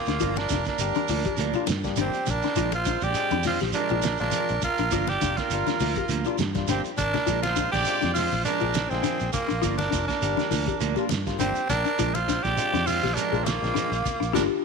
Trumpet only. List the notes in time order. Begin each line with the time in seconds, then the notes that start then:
Already playing: F4
0.38 A#4
0.67 A#4
2.02 G4
2.30 A#4
2.74 C5
3.04 D5
3.48 C5
3.75 A#4
4.21 A#4
4.64 A#4
5.09 D5
5.39 A#4
6.71 G4
7.00 A#4
7.45 C5
7.74 D5
8.17 C5
8.46 A#4
8.91 G#4
9.34 F4
9.80 A#4
10.09 A#4
11.41 G4
11.70 A#4
12.15 C5
12.44 D5
12.86 C5
13.16 A#4
13.46 F4
14.35 A#4